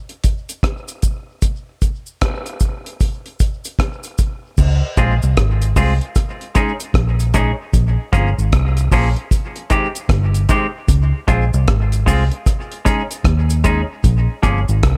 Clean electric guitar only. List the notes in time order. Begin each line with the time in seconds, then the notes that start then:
4.98 G#3 C4 F4 G#4
5.76 G#3 C4 F4 G#4
6.55 G#3 C#4 D#4 G#4
7.34 G#3 C#4 D#4 G#4
8.13 F3 A#3 C#4 G#4
8.92 F3 A#3 C#4 G#4
9.70 D#3 G#3 C4 G4
10.49 D#3 G#3 C4 G4
11.28 G#3 C4 F4 G#4
12.06 G#3 C4 F4 G#4
12.85 G#3 C#4 D#4 G#4
13.64 G#3 C#4 D#4 G#4
14.43 F3 A#3 C#4 G#4